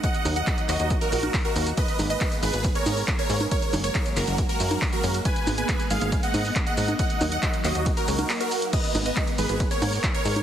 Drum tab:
CC |----------------|----------------|----------------|----------------|
RD |----------------|x---x---x---x---|x---x---x---x---|x---x---x---x---|
HH |xxoxxxoxxxoxoxox|xxoxxxoxxxooxxox|xxoxxxoxxxoxoxox|xxoxxxoxxxooxxox|
SH |xxxxxxxxxxxxxxxx|xxxxxxxxxxxxx-xx|xxxxxxxxxxxxx-xx|xxxxxxxxxxxxx-xx|
CP |----x-x-----x---|----x-------x---|----x-x-----x---|----x-------x---|
CG |--o--------o----|--o-------o----o|--o--------o----|--o-------o----o|
BD |o---o---o---o---|o---o---o---o---|o---o---o---o---|o---o---o---o---|

CC |----------------|x---------------|
RD |x---x---x---x---|x---x---x---x---|
HH |xxoxxxoxxxoxoxox|xxoxxxoxxxooxxox|
SH |xxxxxxxxxxxxxxxx|xxxxxxxxxxxxx-xx|
CP |----x-x-----x---|----x-------x---|
CG |--o--------o----|--o-------o----o|
BD |o---o---o-------|o---o---o---o---|